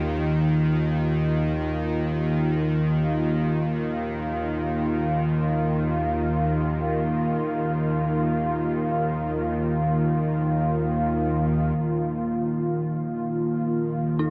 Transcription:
0, 0, Header, 1, 4, 480
1, 0, Start_track
1, 0, Tempo, 500000
1, 13729, End_track
2, 0, Start_track
2, 0, Title_t, "Synth bell"
2, 0, Program_c, 0, 98
2, 11502, Control_c, 0, 64, 127
2, 13625, Note_on_c, 0, 63, 47
2, 13729, Note_off_c, 0, 63, 0
2, 13729, End_track
3, 0, Start_track
3, 0, Title_t, "Analog synth pad"
3, 0, Program_c, 1, 89
3, 0, Note_on_c, 1, 51, 59
3, 0, Note_on_c, 1, 58, 74
3, 0, Note_on_c, 1, 65, 74
3, 13729, Note_off_c, 1, 51, 0
3, 13729, Note_off_c, 1, 58, 0
3, 13729, Note_off_c, 1, 65, 0
3, 13729, End_track
4, 0, Start_track
4, 0, Title_t, "Synth drone"
4, 0, Program_c, 2, 95
4, 0, Note_on_c, 2, 39, 76
4, 0, Note_on_c, 2, 51, 75
4, 11315, Note_off_c, 2, 51, 0
4, 11323, Note_off_c, 2, 39, 0
4, 11326, Note_on_c, 2, 51, 78
4, 11334, Note_on_c, 2, 39, 75
4, 13729, Note_off_c, 2, 39, 0
4, 13729, Note_off_c, 2, 51, 0
4, 13729, End_track
0, 0, End_of_file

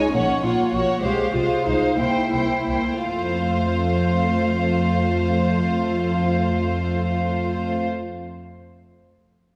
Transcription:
0, 0, Header, 1, 6, 480
1, 0, Start_track
1, 0, Tempo, 594059
1, 835, Time_signature, 6, 3, 24, 8
1, 836, Tempo, 647249
1, 1796, Tempo, 692042
1, 6810, End_track
2, 0, Start_track
2, 0, Title_t, "Violin section"
2, 0, Program_c, 0, 48
2, 0, Note_on_c, 0, 80, 50
2, 114, Note_off_c, 0, 80, 0
2, 124, Note_on_c, 0, 78, 49
2, 348, Note_off_c, 0, 78, 0
2, 358, Note_on_c, 0, 78, 41
2, 588, Note_off_c, 0, 78, 0
2, 597, Note_on_c, 0, 78, 43
2, 833, Note_off_c, 0, 78, 0
2, 845, Note_on_c, 0, 77, 44
2, 1061, Note_off_c, 0, 77, 0
2, 1070, Note_on_c, 0, 77, 42
2, 1293, Note_off_c, 0, 77, 0
2, 1301, Note_on_c, 0, 77, 40
2, 1540, Note_off_c, 0, 77, 0
2, 1549, Note_on_c, 0, 79, 42
2, 1793, Note_off_c, 0, 79, 0
2, 1804, Note_on_c, 0, 79, 33
2, 2029, Note_off_c, 0, 79, 0
2, 2038, Note_on_c, 0, 79, 31
2, 2278, Note_off_c, 0, 79, 0
2, 2279, Note_on_c, 0, 77, 42
2, 5596, Note_off_c, 0, 77, 0
2, 6810, End_track
3, 0, Start_track
3, 0, Title_t, "Violin section"
3, 0, Program_c, 1, 48
3, 0, Note_on_c, 1, 73, 44
3, 105, Note_off_c, 1, 73, 0
3, 115, Note_on_c, 1, 73, 49
3, 337, Note_off_c, 1, 73, 0
3, 347, Note_on_c, 1, 73, 43
3, 573, Note_off_c, 1, 73, 0
3, 583, Note_on_c, 1, 73, 51
3, 826, Note_off_c, 1, 73, 0
3, 827, Note_on_c, 1, 72, 43
3, 1055, Note_off_c, 1, 72, 0
3, 1068, Note_on_c, 1, 72, 45
3, 1293, Note_off_c, 1, 72, 0
3, 1302, Note_on_c, 1, 72, 44
3, 1532, Note_off_c, 1, 72, 0
3, 1540, Note_on_c, 1, 72, 39
3, 1785, Note_off_c, 1, 72, 0
3, 1794, Note_on_c, 1, 72, 35
3, 2030, Note_off_c, 1, 72, 0
3, 2038, Note_on_c, 1, 72, 36
3, 2278, Note_off_c, 1, 72, 0
3, 2286, Note_on_c, 1, 72, 41
3, 5604, Note_off_c, 1, 72, 0
3, 6810, End_track
4, 0, Start_track
4, 0, Title_t, "Cello section"
4, 0, Program_c, 2, 48
4, 0, Note_on_c, 2, 63, 79
4, 110, Note_off_c, 2, 63, 0
4, 118, Note_on_c, 2, 61, 64
4, 348, Note_off_c, 2, 61, 0
4, 350, Note_on_c, 2, 65, 59
4, 589, Note_on_c, 2, 66, 60
4, 591, Note_off_c, 2, 65, 0
4, 832, Note_on_c, 2, 67, 61
4, 834, Note_off_c, 2, 66, 0
4, 1058, Note_off_c, 2, 67, 0
4, 1061, Note_on_c, 2, 65, 55
4, 1297, Note_on_c, 2, 63, 65
4, 1298, Note_off_c, 2, 65, 0
4, 1542, Note_off_c, 2, 63, 0
4, 1542, Note_on_c, 2, 64, 59
4, 2282, Note_off_c, 2, 64, 0
4, 2283, Note_on_c, 2, 65, 52
4, 5600, Note_off_c, 2, 65, 0
4, 6810, End_track
5, 0, Start_track
5, 0, Title_t, "Viola section"
5, 0, Program_c, 3, 48
5, 0, Note_on_c, 3, 56, 42
5, 107, Note_off_c, 3, 56, 0
5, 113, Note_on_c, 3, 58, 48
5, 342, Note_off_c, 3, 58, 0
5, 352, Note_on_c, 3, 58, 44
5, 584, Note_off_c, 3, 58, 0
5, 594, Note_on_c, 3, 58, 44
5, 832, Note_off_c, 3, 58, 0
5, 832, Note_on_c, 3, 56, 49
5, 1052, Note_off_c, 3, 56, 0
5, 1061, Note_on_c, 3, 56, 45
5, 1287, Note_off_c, 3, 56, 0
5, 1296, Note_on_c, 3, 56, 38
5, 1537, Note_off_c, 3, 56, 0
5, 1537, Note_on_c, 3, 58, 37
5, 1777, Note_off_c, 3, 58, 0
5, 1786, Note_on_c, 3, 58, 37
5, 2020, Note_off_c, 3, 58, 0
5, 2028, Note_on_c, 3, 58, 36
5, 2273, Note_off_c, 3, 58, 0
5, 2277, Note_on_c, 3, 57, 41
5, 5594, Note_off_c, 3, 57, 0
5, 6810, End_track
6, 0, Start_track
6, 0, Title_t, "Double bass section"
6, 0, Program_c, 4, 48
6, 118, Note_on_c, 4, 34, 54
6, 183, Note_off_c, 4, 34, 0
6, 355, Note_on_c, 4, 34, 45
6, 420, Note_off_c, 4, 34, 0
6, 593, Note_on_c, 4, 34, 48
6, 658, Note_off_c, 4, 34, 0
6, 836, Note_on_c, 4, 36, 53
6, 895, Note_off_c, 4, 36, 0
6, 1066, Note_on_c, 4, 36, 40
6, 1125, Note_off_c, 4, 36, 0
6, 1303, Note_on_c, 4, 36, 43
6, 1362, Note_off_c, 4, 36, 0
6, 1544, Note_on_c, 4, 36, 44
6, 1603, Note_off_c, 4, 36, 0
6, 1797, Note_on_c, 4, 36, 44
6, 1852, Note_off_c, 4, 36, 0
6, 2041, Note_on_c, 4, 36, 38
6, 2097, Note_off_c, 4, 36, 0
6, 2284, Note_on_c, 4, 41, 48
6, 5602, Note_off_c, 4, 41, 0
6, 6810, End_track
0, 0, End_of_file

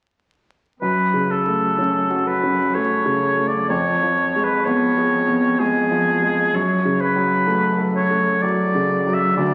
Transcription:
0, 0, Header, 1, 4, 480
1, 0, Start_track
1, 0, Key_signature, 3, "minor"
1, 0, Tempo, 963082
1, 408, Time_signature, 3, 2, 24, 8
1, 2327, Tempo, 938967
1, 4818, End_track
2, 0, Start_track
2, 0, Title_t, "Oboe"
2, 0, Program_c, 0, 68
2, 406, Note_on_c, 0, 71, 47
2, 650, Note_on_c, 0, 69, 37
2, 658, Note_off_c, 0, 71, 0
2, 1130, Note_on_c, 0, 71, 46
2, 1138, Note_off_c, 0, 69, 0
2, 1369, Note_on_c, 0, 73, 41
2, 1377, Note_off_c, 0, 71, 0
2, 1731, Note_on_c, 0, 74, 38
2, 1738, Note_off_c, 0, 73, 0
2, 1834, Note_off_c, 0, 74, 0
2, 1837, Note_on_c, 0, 73, 44
2, 2214, Note_on_c, 0, 71, 41
2, 2221, Note_off_c, 0, 73, 0
2, 2319, Note_on_c, 0, 73, 43
2, 2326, Note_off_c, 0, 71, 0
2, 2799, Note_on_c, 0, 68, 47
2, 2807, Note_off_c, 0, 73, 0
2, 3290, Note_on_c, 0, 73, 41
2, 3298, Note_off_c, 0, 68, 0
2, 3523, Note_on_c, 0, 71, 52
2, 3531, Note_off_c, 0, 73, 0
2, 3920, Note_off_c, 0, 71, 0
2, 4007, Note_on_c, 0, 73, 50
2, 4244, Note_on_c, 0, 74, 43
2, 4252, Note_off_c, 0, 73, 0
2, 4612, Note_on_c, 0, 76, 44
2, 4620, Note_off_c, 0, 74, 0
2, 4725, Note_off_c, 0, 76, 0
2, 4728, Note_on_c, 0, 74, 48
2, 4818, Note_off_c, 0, 74, 0
2, 4818, End_track
3, 0, Start_track
3, 0, Title_t, "Grand piano"
3, 0, Program_c, 1, 0
3, 408, Note_on_c, 1, 42, 37
3, 514, Control_c, 1, 64, 127
3, 566, Note_on_c, 1, 49, 29
3, 731, Note_on_c, 1, 57, 28
3, 824, Note_off_c, 1, 49, 0
3, 889, Note_on_c, 1, 61, 27
3, 986, Note_off_c, 1, 57, 0
3, 1048, Note_on_c, 1, 66, 29
3, 1144, Note_off_c, 1, 61, 0
3, 1213, Note_on_c, 1, 61, 25
3, 1302, Note_off_c, 1, 66, 0
3, 1369, Note_on_c, 1, 57, 30
3, 1463, Note_off_c, 1, 61, 0
3, 1523, Note_on_c, 1, 49, 27
3, 1621, Note_off_c, 1, 57, 0
3, 1687, Note_on_c, 1, 57, 25
3, 1780, Note_off_c, 1, 49, 0
3, 1825, Note_off_c, 1, 42, 0
3, 1844, Note_on_c, 1, 41, 40
3, 1847, Note_off_c, 1, 57, 0
3, 1854, Control_c, 1, 64, 0
3, 1949, Control_c, 1, 64, 127
3, 2007, Note_on_c, 1, 53, 29
3, 2173, Note_on_c, 1, 56, 28
3, 2263, Note_off_c, 1, 53, 0
3, 2326, Note_on_c, 1, 59, 32
3, 2425, Note_off_c, 1, 56, 0
3, 2484, Note_on_c, 1, 68, 27
3, 2581, Note_off_c, 1, 59, 0
3, 2641, Note_on_c, 1, 59, 28
3, 2739, Note_off_c, 1, 68, 0
3, 2802, Note_on_c, 1, 56, 33
3, 2899, Note_off_c, 1, 59, 0
3, 2962, Note_on_c, 1, 53, 26
3, 3061, Note_off_c, 1, 56, 0
3, 3122, Note_on_c, 1, 56, 28
3, 3221, Note_off_c, 1, 53, 0
3, 3266, Note_off_c, 1, 41, 0
3, 3281, Note_on_c, 1, 42, 38
3, 3284, Note_off_c, 1, 56, 0
3, 3295, Control_c, 1, 64, 0
3, 3393, Control_c, 1, 64, 127
3, 3443, Note_on_c, 1, 49, 32
3, 3600, Note_on_c, 1, 54, 32
3, 3698, Note_off_c, 1, 49, 0
3, 3757, Note_on_c, 1, 57, 33
3, 3858, Note_off_c, 1, 54, 0
3, 3919, Note_on_c, 1, 69, 30
3, 4018, Note_off_c, 1, 57, 0
3, 4083, Note_on_c, 1, 57, 24
3, 4180, Note_off_c, 1, 69, 0
3, 4250, Note_on_c, 1, 54, 29
3, 4343, Note_off_c, 1, 57, 0
3, 4412, Note_on_c, 1, 49, 28
3, 4506, Note_off_c, 1, 54, 0
3, 4572, Note_on_c, 1, 54, 32
3, 4665, Note_off_c, 1, 49, 0
3, 4704, Note_off_c, 1, 42, 0
3, 4729, Note_off_c, 1, 54, 0
3, 4731, Note_on_c, 1, 38, 45
3, 4736, Control_c, 1, 64, 0
3, 4809, Control_c, 1, 64, 127
3, 4818, Note_off_c, 1, 38, 0
3, 4818, End_track
4, 0, Start_track
4, 0, Title_t, "Cello section"
4, 0, Program_c, 2, 48
4, 404, Note_on_c, 2, 42, 36
4, 1823, Note_off_c, 2, 42, 0
4, 1842, Note_on_c, 2, 41, 34
4, 3265, Note_off_c, 2, 41, 0
4, 3288, Note_on_c, 2, 42, 36
4, 4707, Note_off_c, 2, 42, 0
4, 4725, Note_on_c, 2, 50, 39
4, 4818, Note_off_c, 2, 50, 0
4, 4818, End_track
0, 0, End_of_file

